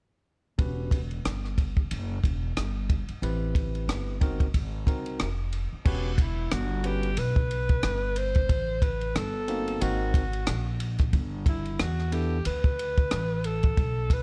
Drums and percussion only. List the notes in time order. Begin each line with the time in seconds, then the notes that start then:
0.59 kick, ride
0.91 kick, ride
1.11 ride
1.25 cross-stick, hi-hat pedal, ride
1.45 cross-stick
1.58 kick, ride
1.77 kick
1.91 ride
2.24 kick, ride
2.57 cross-stick, hi-hat pedal, ride
2.90 kick, ride
3.09 ride
3.23 ride
3.55 kick, ride
3.75 ride
3.89 cross-stick, hi-hat pedal, ride
4.21 kick, ride
4.40 kick, ride
4.54 kick, ride
4.87 kick, ride
5.06 ride
5.19 cross-stick, hi-hat pedal, ride
5.53 ride
5.85 kick, crash
6.18 kick, ride
6.51 cross-stick, hi-hat pedal, ride
6.84 ride
7.03 ride
7.17 ride
7.36 kick
7.51 ride
7.69 kick, ride
7.83 cross-stick, hi-hat pedal, ride
8.16 ride
8.35 kick, ride
8.49 kick, ride
8.82 kick, ride
9.01 ride
9.15 cross-stick, hi-hat pedal, ride
9.48 ride
9.68 ride
9.81 ride
10.14 kick, ride
10.33 ride
10.47 cross-stick, hi-hat pedal, ride
10.80 ride
10.98 kick, cross-stick, ride
11.13 kick, ride
11.46 kick, ride
11.65 ride
11.79 cross-stick, hi-hat pedal, ride
11.99 cross-stick
12.12 ride
12.45 ride
12.64 kick
12.79 ride
12.97 kick, ride
13.11 cross-stick, hi-hat pedal, ride
13.44 ride
13.63 kick, ride
13.77 kick, ride
14.10 kick, ride